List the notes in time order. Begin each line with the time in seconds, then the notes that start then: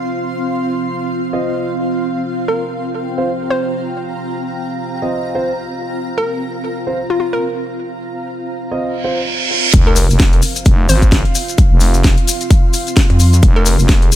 Already playing: C4 F4 F5 C6
1.33 C4 F4 D#5
2.35 G5
2.48 A#4
3.00 A#5
3.18 C4 F4 C5
3.50 C5
5.02 C4 F4 D#5
5.35 C4 F4 C5
6.18 A#4
6.87 C4 F4 C5
7.10 F4
7.20 F4
7.33 A#4
8.71 C4 F4 D#5
8.81 reverse cymbal
9.04 C4 F4 C5
9.73 F1 C4 F4 F5, kick, closed hi-hat, sub drop, maracas
9.85 F4 A#4 F5
9.96 open hi-hat, maracas
10.10 F1, maracas
10.20 kick, snare, closed hi-hat, maracas
10.31 C6, closed hi-hat
10.42 open hi-hat, maracas
10.56 closed hi-hat, maracas
10.65 F1, kick, closed hi-hat, maracas
10.89 G#1 C5, open hi-hat, maracas
11.02 kick, closed hi-hat, maracas
11.11 kick, snare, closed hi-hat, maracas
11.25 closed hi-hat
11.35 open hi-hat, maracas
11.48 closed hi-hat, maracas
11.58 kick, closed hi-hat, maracas
11.71 F1
11.80 open hi-hat, maracas
11.94 maracas
12.04 kick, snare, closed hi-hat, maracas
12.18 closed hi-hat
12.27 open hi-hat, maracas
12.41 closed hi-hat, maracas
12.51 kick, closed hi-hat, maracas
12.73 open hi-hat, maracas
12.87 closed hi-hat, maracas
12.96 kick, snare, closed hi-hat, maracas
13.10 F2, closed hi-hat
13.20 open hi-hat, maracas
13.33 closed hi-hat, maracas
13.43 F1 G#4, kick, closed hi-hat, maracas
13.56 A#4
13.66 open hi-hat, maracas
13.79 F1, maracas
13.89 kick, snare, closed hi-hat, maracas
14.02 closed hi-hat
14.12 open hi-hat, maracas